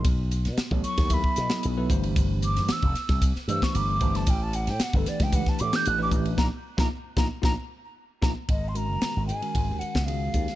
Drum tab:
RD |x-xxx-xxx-xxx-xx|x-xxx-xxx-x-x-xx|x-xxx-xxx-xxx-xx|----------------|
HH |p-p-p-p-p-p-p-p-|p-p-p-p-p-p-p-p-|p-p-p-p-p-p-p-p-|----------------|
SD |---oo--o--oo----|---oo-oo-o-o---o|---oo-oo-o-o----|o--o--o-o-----o-|
BD |o----o-ooo----o-|o----o-oo--o--o-|o----o-ooo----o-|o--o--o-o-----o-|

RD |x-x-x-xxx-x-x-xx|
HH |--p---p---p---p-|
SD |----o------o---o|
BD |o-------o--o--o-|